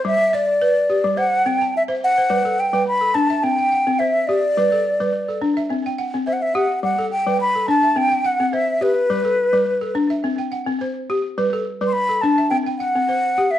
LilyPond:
<<
  \new Staff \with { instrumentName = "Flute" } { \time 4/4 \key g \major \tempo 4 = 106 e''8 d''4. fis''8 g''8 e''8 fis''8~ | fis''8 g''8 b''8 a''8 g''4 e''8 d''8~ | d''4. r4. e''32 fis''32 e''16 fis''8 | fis''8 g''8 b''8 a''8 g''8 fis''8 e''8 b'8~ |
b'4. r2 r8 | r8. r32 c'''32 b''8 a''8 g''8 fis''4~ fis''16 e''16 | }
  \new Staff \with { instrumentName = "Balafon" } { \time 4/4 \key g \major << { c''16 r16 d''8. r16 g'8 c''8. a''8. r16 c''16 | b'16 a'8 b'8 a'8 e''8 g''16 fis''8 c''8. r16 | b'16 a'8 b'8 a'8 e''8 g''16 fis''8 c''8. r16 | r16 a'8 b'8 a'8 e''8 g''16 fis''8 c''8. r16 |
b'16 a'8 b'8 a'8 e''8 g''16 fis''8 c''8. r16 | b'16 a'8 b'8 a'8 e''8 g''16 fis''8 c''8. r16 | } \\ { g8 r8 b'8 r16 g16 r8 c'8 r16 c''8 r16 | g8 r16 g8 r16 d'8 c'8 r16 c'8 r16 g'8 | g8 r16 g8 r16 d'8 c'8 r16 c'8 r16 g'8 | g8 r16 g8 r16 d'8 c'8 r16 c'8 r16 g'8 |
g8 r16 g8 r16 d'8 c'8 r16 c'8 r16 g'8 | g8 r16 g8 r16 d'8 c'8 r16 c'8 r16 g'8 | } >> }
>>